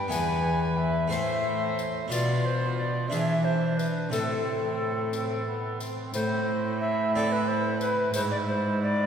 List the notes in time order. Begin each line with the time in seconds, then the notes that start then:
0.08 E2 B3 E4 B4 G#5, tambourine
0.13 B4
0.62 G#5
0.77 E5
1.08 A2 A3 E4 C5 E5
1.12 tambourine
1.79 tambourine
2.08 B2 D4 F4 D5, tambourine
2.12 F4
2.46 C5
2.77 D5
3.09 E3 D4 E4 G#4 E5, tambourine
3.44 C5
3.78 B4, tambourine
4.10 A2 C3 C4 E4 A4, tambourine
5.13 C4, tambourine
5.48 B3
5.80 C4, tambourine
6.14 A2 E4 C5, tambourine
6.81 E5
7.15 C4 E4 A4 D5
7.32 B4
7.48 C5
7.81 B4, tambourine
8.14 G#2 E4 C5, tambourine
8.31 D5
8.47 C5
8.82 D5